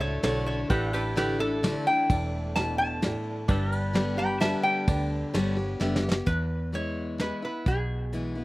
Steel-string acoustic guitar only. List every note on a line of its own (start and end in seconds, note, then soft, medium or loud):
0.00 0.19 A2 loud
0.00 0.21 A3 medium
0.00 0.22 D4 medium
0.00 0.22 E4 medium
0.23 0.67 D3 medium
0.23 0.68 A3 medium
0.23 0.68 D4 medium
0.23 0.69 E4 loud
0.70 1.58 A2 medium
1.16 1.38 D3 medium
1.16 1.39 A3 medium
1.16 1.39 D4 medium
1.16 1.38 E4 medium
1.39 1.63 D4 soft
1.39 1.62 E4 medium
1.63 1.85 D3 medium
1.63 1.86 A3 medium
1.63 1.86 D4 medium
1.63 1.85 E4 medium
1.86 2.10 D4 soft
1.86 2.09 E4 medium
2.10 2.98 E2 medium
2.57 3.01 B2 medium
3.02 3.46 A2 medium
3.48 4.37 G2 medium
3.93 4.17 D3 medium
3.93 4.17 G3 medium
3.93 4.17 B3 medium
3.93 4.16 G4 loud
4.17 4.40 B3 medium
4.17 4.40 G4 medium
4.40 4.85 D3 medium
4.40 4.85 G3 medium
4.40 4.85 B3 loud
4.40 4.86 G4 loud
4.88 5.32 D3 medium
5.34 5.56 D3 medium
5.34 5.56 G3 medium
5.34 5.57 B3 medium
5.34 5.55 G4 medium
5.57 5.80 B3 soft
5.57 5.79 G4 medium
5.80 6.02 D3 medium
5.80 6.03 G3 medium
5.80 6.03 B3 medium
5.80 6.02 G4 loud
6.03 6.27 B3 soft
6.03 6.26 G4 medium
6.26 7.15 E2 medium
6.72 7.17 E3 medium
6.72 7.17 G#3 medium
6.72 7.18 B3 medium
6.72 7.18 E4 medium
7.18 7.41 E3 medium
7.18 7.42 G#3 medium
7.18 7.42 B3 medium
7.18 7.41 E4 medium
7.42 7.66 B3 soft
7.42 7.65 E4 medium
7.66 8.44 B2 medium
8.13 8.35 E3 medium
8.13 8.35 G#3 medium
8.13 8.35 B3 medium
8.13 8.34 E4 medium
8.35 8.44 B3 soft
8.35 8.44 E4 medium